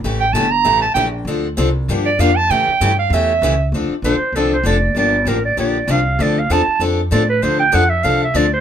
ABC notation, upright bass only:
X:1
M:4/4
L:1/8
Q:"Swing" 1/4=195
K:Dm
V:1 name="Upright bass" clef=bass
A,,,2 G,,,2 A,,,2 B,,,2 | D,,2 C,,2 G,,2 F,,2 | A,, z G,,2 E,,2 ^C,,2 | D,, z B,,, z C,,2 F,,,2 |
G,,,2 A,,,2 B,,,2 C,,2 | D,,2 E,, z F,,2 A,,2 | D,,2 F,,2 C,,2 D,,2 |]